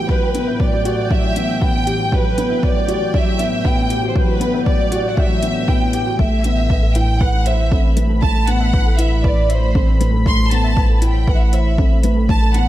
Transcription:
Already playing: A2 E3 F#3 B3 F#4 G4 G5
0.09 F#3 B4, kick
0.22 F#4
0.34 B3, closed hi-hat
0.47 E5
0.60 F#3 D5, kick
0.72 F#4
0.85 F#4 G4, closed hi-hat
1.10 F#3 E5 G5, kick
1.36 B3 E5, closed hi-hat
1.61 B3 F#4 G5, kick
1.86 G4, closed hi-hat
2.00 F#4
2.12 F#3 B4, kick
2.25 F#4
2.38 B3, closed hi-hat
2.50 E5
2.63 F#3 D5, kick
2.75 F#4
2.88 F#4 G4, closed hi-hat
3.14 F#3 E5 G5, kick
3.39 B3 E5, closed hi-hat
3.65 B3 F#4 G5, kick
3.90 G4, closed hi-hat
4.03 F#4
4.08 C5
4.15 F#3 B4, kick
4.28 F#4
4.40 B3, closed hi-hat
4.54 E5
4.66 F#3 D5, kick
4.79 F#4
4.92 F#4 G4, closed hi-hat
5.10 F#5
5.17 F#3 E5 G5, kick
5.42 B3 E5, closed hi-hat
5.68 B3 F#4 G5, kick
5.93 G4, closed hi-hat
6.07 F#4
6.19 A1 A2 A3 E5, kick
6.31 A4
6.44 E3 B3, closed hi-hat
6.57 E5
6.70 B4, kick
6.77 B5
6.82 A4
6.95 E4 B4 G5, closed hi-hat
7.20 B4 F#5 B5, kick
7.46 C5 E5, closed hi-hat
7.71 C4 A4, kick
7.96 A3 B4, closed hi-hat
8.10 A4
8.22 A3 A5, kick
8.35 A4
8.47 B3 F#5, closed hi-hat
8.60 E5
8.73 B4, kick
8.86 A4
8.98 E4 B4 E5, closed hi-hat
9.24 B4 D5 B5, kick
9.49 C5 E5, closed hi-hat
9.75 C4 A4, kick
10.00 A3 B4, closed hi-hat
10.13 A4
10.26 A3 C6, kick
10.39 A4
10.51 B3 A5, closed hi-hat
10.64 E5
10.76 B4, kick
10.89 A4
10.96 A5
11.02 E4 B4 G5, closed hi-hat
11.27 B4 F#5 B5, kick
11.34 E5
11.41 F#5
11.53 C5 E5, closed hi-hat
11.78 C4 A4, kick
12.03 A3 B4, closed hi-hat
12.16 A4
12.29 A3 A5, kick
12.42 A4
12.54 B3 F#5, closed hi-hat

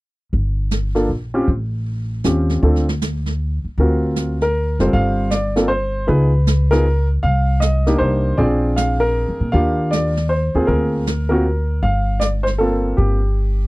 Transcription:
0.33 G1, brush sweep, kick
0.71 snare, hi-hat pedal
0.95 A#3 D4 F4 A4, snare
1.09 A#1
1.34 C4 C#4 F4 G4
1.47 A1, brush sweep, kick
2.24 D#2 C4 C#4 F4 G4, snare, hi-hat pedal
2.49 snare
2.63 D2 C4 D4 F4 A4, brush sweep, kick
2.76 snare
2.89 snare
3.01 snare, hi-hat pedal
3.26 snare
3.65 muted upright bass stroke
3.78 D2 C4 F4 F#4 A#4, brush sweep, kick
4.16 snare, hi-hat pedal
4.41 A#4, snare
4.79 F#1 G3 C4 F4 A4 C5, snare
4.93 G1 F5, brush sweep, kick
5.31 D5, snare, hi-hat pedal
5.56 A#3 C4 F4 A4, snare
5.68 C5
6.07 C#2 B3 D#4 F4 G#4 B4, brush sweep, kick
6.47 snare, hi-hat pedal
6.71 B3 D#4 F4 G#4 A#4, snare
7.23 C2 F5, brush sweep, kick
7.60 D#5, snare, hi-hat pedal
7.86 A#3 D4 D#4 G4, snare
7.98 C2 C5
8.37 A#1 C4 D4 F4 G#4 D5, brush sweep, kick
8.76 F5, snare, hi-hat pedal
9.00 A#4
9.29 F2
9.40 A#2
9.52 D#2 A#3 D4 F4 G4 F5, brush sweep, kick
9.91 D5, snare, hi-hat pedal
10.17 snare
10.29 C5
10.55 D#2 A#3 C4 F4 G#4
10.67 D2 A#4, brush sweep, kick
11.06 snare, hi-hat pedal
11.29 A#3 C4 F4 F#4 A#4
11.83 G1 F5, brush sweep, kick
12.20 D5, snare, hi-hat pedal
12.43 C5, snare
12.58 A#3 C4 F4 A4
12.97 G1 G4, brush sweep, kick

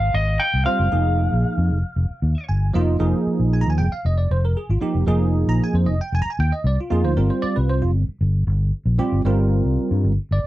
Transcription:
Already playing: F5
0.14 G#1 D#5
0.40 G5
0.54 C2
0.65 G3 C4 F4 C5 F5
0.80 F#1
0.92 F1 F3 A#3 D#4 G#4
1.32 A#1
1.45 muted fingered electric bass stroke
1.58 F2
1.71 F1
1.96 F1
2.10 muted fingered electric bass stroke
2.22 D#2
2.49 G1 G#5
2.74 F1 F3 A#3 D#4 F4 D#5
2.99 F1 F3 A#3 D#4 G#4
3.27 muted fingered electric bass stroke
3.40 A#1
3.53 G#5
3.61 A#5
3.67 D#2 G#5
3.78 F1 G5
3.92 F5
4.05 F1 D#5
4.18 D5
4.31 F1 C5
4.45 A#4
4.57 G#4
4.69 G#1 F4
4.81 F3 A#3 D#4 G4, muted fingered electric bass stroke
4.95 F1
5.07 F1 F3 A#3 D#4 G#4
5.47 A#1 A#5
5.60 G#5, muted fingered electric bass stroke
5.73 F2 C5
5.86 F1 D#5
6.01 G5
6.12 F1 G#5
6.22 A#5, muted fingered electric bass stroke
6.30 G#5
6.39 D#2 G5
6.52 D#5
6.64 C2 D5
6.81 F4
6.90 F2 F3 A#3 D#4 F4 G#4
7.04 D2 C5
7.17 G1 G3 C4 F4 A#4
7.30 C5
7.42 D5, muted fingered electric bass stroke
7.56 C2 B4
7.70 C5
7.82 F1 F4
7.95 G1
8.09 muted fingered electric bass stroke
8.21 G1
8.47 G1
8.86 A#1
8.98 G3 C4 F4 G4, muted fingered electric bass stroke
9.12 G1
9.25 G1 G3 C4 F4 A#4
9.65 C2
9.78 muted fingered electric bass stroke
9.91 G2
10.04 G1
10.31 G1 D5

